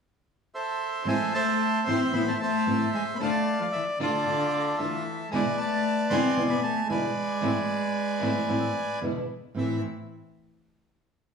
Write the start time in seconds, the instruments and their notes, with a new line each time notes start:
0.54 bandoneon A4 C5 E5
1.05 nylon-string guitar A2 E3 A3 C4 E4, cello G#3, string section A3 C4 E4, bandoneon C5 E5 G#5
1.34 cello A3, bandoneon C5 E5 A5
1.86 nylon-string guitar A2 E3 A3 C4 E4, string section A3 C4 E4, cello C4, bandoneon C6
2.12 nylon-string guitar A2 E3 A3 C4 E4, string section A3 C4 E4, cello B3, bandoneon E5 B5
2.27 cello A3, bandoneon A5
2.39 cello A3, bandoneon C5 E5 A5
2.66 nylon-string guitar A2 E3 A3 C4 E4, string section A3 C4 E4
2.92 cello G#3, bandoneon G#5
3.14 cello A3 B3, bandoneon B5
3.20 nylon-string guitar D3 A3 D4 F4, string section A3 D4 F4, bandoneon D5 F5 A5
3.59 cello F3, bandoneon F5
3.72 cello E3, bandoneon E5
3.99 nylon-string guitar D3 A3 D4 F4, cello D3, string section A3 D4 F4, bandoneon F4 A4 D5
4.25 nylon-string guitar D3 A3 D4 F4, string section A3 D4 F4
4.78 nylon-string guitar D3 A3 D4 F4, cello E3, string section A3 D4 F4, bandoneon A4 E5
5.31 nylon-string guitar E2 B2 D3 G#3 B3 E4, cello G#3, string section G#3 D4 E4, bandoneon G#5
5.35 bandoneon B4 D5
5.58 cello A3, bandoneon D5 A5
6.10 nylon-string guitar E2 B2 D3 G#3 B3 E4, string section G#3 D4 E4, cello C4, bandoneon G#5 C6
6.36 nylon-string guitar E2 B2 D3 G#3 B3 E4, string section G#3 D4 E4
6.49 cello B3, bandoneon B5
6.63 cello A3, bandoneon A5
6.88 nylon-string guitar E2 B2 D3 G#3 B3 E4, cello G#3, string section G#3 D4 E4, bandoneon B4 D5 G#5
7.41 nylon-string guitar A2 E3 A3 C4 E4, string section A3 C4 E4
8.21 nylon-string guitar A2 E3 A3 C4 E4, string section A3 C4 E4
8.48 nylon-string guitar A2 E3 A3 C4 E4, string section A3 C4 E4
9.01 nylon-string guitar E2 B2 D3 G#3 B3 E4, string section G#3 D4 E4
9.55 nylon-string guitar A2 E3 A3 C4 E4, cello E3, string section A3 C4 E4, bandoneon E5